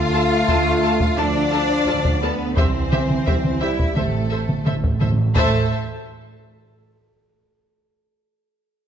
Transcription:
Already playing: double bass section D2, french horn section A3, cello section F4, violin section F5
0.13 viola section F4 A4, violin section A5
0.47 double bass section D2, viola section F4 A4, violin section A5, taiko
0.82 viola section F4 A4, violin section A5
1.00 taiko
1.17 double bass section D2, french horn section F3, cello section D4, viola section F4 A4, violin section D5 A5
1.52 viola section F4 A4, violin section A5
1.87 double bass section D2, viola section F4 A4, violin section A5
2.05 taiko
2.22 french horn section D3, cello section B3, viola section F4 A4, violin section B4 A5
2.56 double bass section C2, french horn section E3, cello section C4, viola section G4 C5, violin section C5 E5, taiko
2.91 viola section G4 C5, violin section E5, taiko mid
3.10 taiko mid
3.25 double bass section C2, viola section G4 C5, violin section E5, taiko
3.44 taiko mid
3.60 french horn section G3, cello section E4, viola section G4 C5, violin section E5
3.79 taiko
3.96 double bass section A1, timpani A2, french horn section C3, cello section A3, viola section A4 C5, violin section A4 E5, taiko mid
4.05 timpani A2
4.12 timpani A2
4.19 timpani A2
4.27 timpani A2, violin section E5
4.31 timpani A2, viola section A4 C5
4.42 timpani A2
4.49 timpani A2, taiko mid
4.57 timpani A2
4.64 double bass section A1, timpani A2, viola section A4 C5, violin section E5, taiko mid
4.72 timpani A2
4.79 timpani A2
4.84 timpani A2, taiko
4.94 timpani A2
5.01 timpani A2, viola section A4 C5, violin section E5, taiko mid
5.09 timpani A2
5.17 timpani A2
5.25 timpani A2
5.35 double bass section A1, timpani A2, french horn section A3, cello section A3, viola section A4 C5, violin section E5 A5, taiko

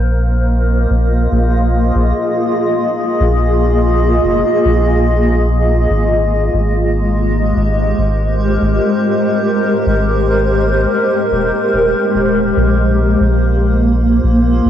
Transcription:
Already playing: sub bass A#1, ambient pad A#3 F4 A#4 C5 D#5
0.88 sub bass A#1, ambient pad G#4
1.32 sub bass A#1
1.95 sub bass A#1
3.20 sub bass A#1
4.23 sub bass F1
4.65 sub bass A#1
5.90 sub bass G#1, ambient pad G#3
6.53 sub bass G#1
6.72 ambient pad G4
7.21 ambient pad C5
7.56 sub bass G#1
7.64 ambient pad A#4
7.98 sub bass G#1
8.61 sub bass G#1
9.86 sub bass G#1
11.32 sub bass D#1
11.73 sub bass D#1
12.15 sub bass D#1
12.57 sub bass A#1, ambient pad A#3
13.20 sub bass A#1
13.31 ambient pad F4
13.88 ambient pad G#4
14.23 sub bass A#1
14.52 ambient pad D#5
14.65 sub bass A#1

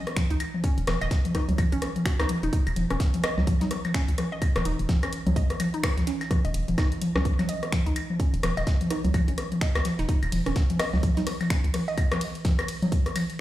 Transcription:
0.07 cross-stick, closed hi-hat
0.17 finger snap, kick, snare, closed hi-hat, high tom
0.30 fm bass C#2, synth arpeggio sound D#4, closed hi-hat
0.40 closed hi-hat, claves
0.54 high tom
0.64 synth arpeggio sound C#4, kick, closed hi-hat
0.78 fm bass D#1, closed hi-hat
0.87 fm bass D#1, cross-stick, snare, closed hi-hat, high tom
1.01 fm bass D#1, synth arpeggio sound D#5, closed hi-hat, claves
1.11 kick, snare, closed hi-hat
1.25 closed hi-hat, high tom
1.35 synth arpeggio sound D#4, kick, cross-stick, closed hi-hat
1.49 fm bass C#2, closed hi-hat, low conga
1.58 kick, closed hi-hat, high tom, claves
1.72 fm bass A#1, synth arpeggio sound C#4, closed hi-hat
1.82 cross-stick, closed hi-hat
1.96 closed hi-hat, high tom
2.05 synth arpeggio sound F#4, finger snap, kick, snare, closed hi-hat
2.19 fm bass C#2, synth arpeggio sound D#4, cross-stick, snare, closed hi-hat, claves
2.29 closed hi-hat, high tom
2.43 fm bass D#1, synth arpeggio sound D#4, closed hi-hat
2.53 synth arpeggio sound D#4, kick, closed hi-hat
2.67 fm bass D#1, closed hi-hat, claves
2.76 fm bass D#1, closed hi-hat, high tom
2.90 fm bass D#1, synth arpeggio sound C#4, cross-stick, closed hi-hat
3.00 kick, snare, closed hi-hat
3.14 closed hi-hat, high tom
3.24 synth arpeggio sound D#5, cross-stick, closed hi-hat, claves
3.38 fm bass C#2, snare, low conga
3.47 kick, closed hi-hat, high tom
3.61 synth arpeggio sound D#4, snare, closed hi-hat, low conga
3.71 cross-stick, closed hi-hat
3.85 closed hi-hat, high tom, claves
3.94 synth arpeggio sound C#4, finger snap, kick, snare, closed hi-hat
4.08 fm bass C#2, closed hi-hat
4.18 cross-stick, closed hi-hat, high tom
4.32 synth arpeggio sound D#5
4.42 kick, closed hi-hat, claves
4.56 fm bass D#1, cross-stick, closed hi-hat, high tom
4.65 fm bass D#1, synth arpeggio sound D#4, closed hi-hat
4.79 fm bass D#1, closed hi-hat
4.89 kick, snare, closed hi-hat, high tom
5.03 synth arpeggio sound C#4, cross-stick, closed hi-hat, claves
5.13 closed hi-hat
5.27 fm bass C#2, closed hi-hat, high tom, low conga
5.36 synth arpeggio sound D#5, kick, closed hi-hat
5.50 cross-stick, closed hi-hat
5.60 closed hi-hat, high tom, claves
5.74 synth arpeggio sound D#4, closed hi-hat
5.83 finger snap, kick, cross-stick, snare, closed hi-hat
5.97 fm bass C#2, snare, closed hi-hat, high tom
6.07 synth arpeggio sound C#4, snare, closed hi-hat
6.21 snare, closed hi-hat, claves
6.31 kick, cross-stick, closed hi-hat, high tom
6.45 fm bass D#1, synth arpeggio sound D#5, closed hi-hat
6.54 fm bass D#1, closed hi-hat
6.68 fm bass D#1, closed hi-hat, high tom
6.78 synth arpeggio sound D#4, kick, cross-stick, snare, closed hi-hat, claves
6.92 closed hi-hat
7.02 closed hi-hat, high tom
7.15 fm bass C#2, synth arpeggio sound C#4, cross-stick, snare, low conga
7.25 kick, closed hi-hat
7.39 snare, closed hi-hat, high tom, low conga, claves
7.49 synth arpeggio sound D#5, closed hi-hat
7.63 cross-stick, closed hi-hat
7.72 finger snap, kick, snare, closed hi-hat, high tom
7.86 fm bass C#2, synth arpeggio sound D#4, closed hi-hat
7.96 closed hi-hat, claves
8.10 high tom
8.20 synth arpeggio sound C#4, kick, closed hi-hat
8.34 fm bass D#1, closed hi-hat
8.43 fm bass D#1, cross-stick, closed hi-hat, high tom
8.57 fm bass D#1, synth arpeggio sound D#5, closed hi-hat, claves
8.67 kick, snare, closed hi-hat
8.81 closed hi-hat, high tom
8.90 synth arpeggio sound D#4, cross-stick, closed hi-hat
9.05 fm bass C#2, closed hi-hat, low conga
9.14 kick, closed hi-hat, high tom, claves
9.28 fm bass A#1, synth arpeggio sound C#4, closed hi-hat
9.38 cross-stick, closed hi-hat
9.52 closed hi-hat, high tom
9.61 synth arpeggio sound D#5, finger snap, kick, snare, closed hi-hat
9.75 fm bass C#2, synth arpeggio sound F#4, cross-stick, snare, closed hi-hat, claves
9.85 snare, closed hi-hat, high tom
9.99 fm bass D#1, synth arpeggio sound D#4, snare, closed hi-hat
10.09 synth arpeggio sound D#4, kick, closed hi-hat
10.23 fm bass D#1, closed hi-hat, claves
10.32 fm bass D#1, closed hi-hat, high tom, ride
10.46 fm bass D#1, synth arpeggio sound C#4, cross-stick, closed hi-hat
10.56 kick, snare, closed hi-hat
10.70 closed hi-hat, high tom
10.79 synth arpeggio sound D#5, cross-stick, closed hi-hat, ride, claves
10.93 fm bass C#2, snare, low conga
11.03 kick, closed hi-hat, high tom
11.17 synth arpeggio sound D#4, snare, closed hi-hat, low conga
11.27 cross-stick, closed hi-hat, ride
11.41 closed hi-hat, high tom, claves
11.50 synth arpeggio sound C#4, finger snap, kick, snare, closed hi-hat
11.64 fm bass C#2, closed hi-hat
11.74 cross-stick, closed hi-hat, high tom, ride
11.88 synth arpeggio sound D#5
11.98 kick, closed hi-hat, claves
12.12 cross-stick, closed hi-hat, high tom
12.21 closed hi-hat, ride
12.35 closed hi-hat
12.45 kick, snare, closed hi-hat, high tom
12.59 cross-stick, closed hi-hat, claves
12.68 closed hi-hat, ride
12.82 closed hi-hat, high tom, low conga
12.92 kick, closed hi-hat
13.06 cross-stick, closed hi-hat
13.16 closed hi-hat, high tom, ride, claves
13.30 closed hi-hat

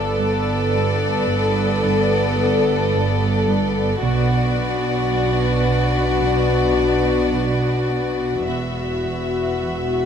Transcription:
Already playing: double bass section G1, cello section G2, french horn section B3 A4, viola section B3, ambient pad A4 B4 D5, violin section A4 D5 A5 D6 E6
0.18 cello section G2
0.73 cello section G3
1.28 cello section G2
1.83 cello section G2
1.95 violin section D#6
2.39 cello section G2
2.94 cello section G2
3.48 cello section G2
4.03 double bass section B1, cello section B2, viola section B3, french horn section D4 F#4, violin section F#4 D5, ambient pad F#4 B4 D5
4.58 cello section B2
5.13 cello section B3
5.68 cello section B2
6.22 cello section B2
6.77 cello section B2
7.32 cello section B2
7.89 cello section B2
8.46 double bass section E1, cello section E2, french horn section B3 F#4, viola section B3, ambient pad F#4 B4 E5, violin section F#4 E5
9.05 cello section E2
9.63 cello section E3

